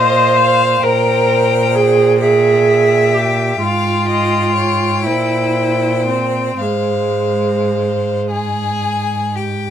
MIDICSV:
0, 0, Header, 1, 5, 480
1, 0, Start_track
1, 0, Key_signature, -4, "minor"
1, 0, Tempo, 928793
1, 433, Time_signature, 6, 3, 24, 8
1, 1872, Tempo, 970874
1, 2832, Tempo, 1052632
1, 3312, Tempo, 1145038
1, 3792, Tempo, 1092896
1, 4272, Tempo, 1016949
1, 4672, End_track
2, 0, Start_track
2, 0, Title_t, "Violin"
2, 0, Program_c, 0, 40
2, 0, Note_on_c, 0, 77, 49
2, 416, Note_off_c, 0, 77, 0
2, 432, Note_on_c, 0, 79, 60
2, 1130, Note_off_c, 0, 79, 0
2, 1142, Note_on_c, 0, 79, 53
2, 3292, Note_off_c, 0, 79, 0
2, 3316, Note_on_c, 0, 77, 38
2, 3980, Note_off_c, 0, 77, 0
2, 4037, Note_on_c, 0, 80, 60
2, 4516, Note_on_c, 0, 79, 49
2, 4523, Note_off_c, 0, 80, 0
2, 4672, Note_off_c, 0, 79, 0
2, 4672, End_track
3, 0, Start_track
3, 0, Title_t, "Violin"
3, 0, Program_c, 1, 40
3, 0, Note_on_c, 1, 75, 55
3, 190, Note_on_c, 1, 77, 57
3, 198, Note_off_c, 1, 75, 0
3, 430, Note_on_c, 1, 72, 55
3, 438, Note_off_c, 1, 77, 0
3, 1145, Note_on_c, 1, 76, 47
3, 1152, Note_off_c, 1, 72, 0
3, 1872, Note_on_c, 1, 77, 54
3, 1880, Note_off_c, 1, 76, 0
3, 2097, Note_off_c, 1, 77, 0
3, 2100, Note_on_c, 1, 75, 46
3, 2332, Note_off_c, 1, 75, 0
3, 2335, Note_on_c, 1, 73, 42
3, 2579, Note_on_c, 1, 72, 42
3, 2586, Note_off_c, 1, 73, 0
3, 3302, Note_off_c, 1, 72, 0
3, 3305, Note_on_c, 1, 72, 43
3, 4021, Note_off_c, 1, 72, 0
3, 4032, Note_on_c, 1, 68, 50
3, 4508, Note_on_c, 1, 67, 45
3, 4515, Note_off_c, 1, 68, 0
3, 4672, Note_off_c, 1, 67, 0
3, 4672, End_track
4, 0, Start_track
4, 0, Title_t, "Viola"
4, 0, Program_c, 2, 41
4, 0, Note_on_c, 2, 72, 85
4, 427, Note_on_c, 2, 70, 65
4, 435, Note_off_c, 2, 72, 0
4, 906, Note_on_c, 2, 68, 73
4, 914, Note_off_c, 2, 70, 0
4, 1136, Note_off_c, 2, 68, 0
4, 1139, Note_on_c, 2, 68, 75
4, 1623, Note_on_c, 2, 67, 61
4, 1631, Note_off_c, 2, 68, 0
4, 1864, Note_off_c, 2, 67, 0
4, 1867, Note_on_c, 2, 65, 74
4, 2567, Note_off_c, 2, 65, 0
4, 2581, Note_on_c, 2, 64, 58
4, 3057, Note_off_c, 2, 64, 0
4, 3067, Note_on_c, 2, 60, 49
4, 3312, Note_on_c, 2, 56, 52
4, 3319, Note_off_c, 2, 60, 0
4, 4040, Note_off_c, 2, 56, 0
4, 4672, End_track
5, 0, Start_track
5, 0, Title_t, "Cello"
5, 0, Program_c, 3, 42
5, 0, Note_on_c, 3, 46, 50
5, 430, Note_off_c, 3, 46, 0
5, 433, Note_on_c, 3, 46, 54
5, 1851, Note_off_c, 3, 46, 0
5, 1872, Note_on_c, 3, 44, 48
5, 2581, Note_on_c, 3, 46, 44
5, 2588, Note_off_c, 3, 44, 0
5, 3308, Note_off_c, 3, 46, 0
5, 3311, Note_on_c, 3, 44, 37
5, 4632, Note_off_c, 3, 44, 0
5, 4672, End_track
0, 0, End_of_file